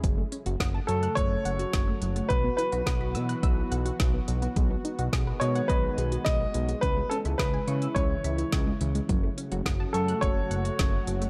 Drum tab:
HH |x-xxx-xxx-xxx-xx|x-xxx-xxx-xxx-xx|x-xxx-xxx-xxx-xx|x-xxx-xxx-xxx-xx|
SD |----o-------o---|----o-------o---|----o-------o---|----o-------o---|
BD |o---o---o---o---|o---o---o---o---|o---o---o---o---|o---o---o---o---|

HH |x-xxx-xxx-xxx-xx|
SD |----o-------o---|
BD |o---o---o---o---|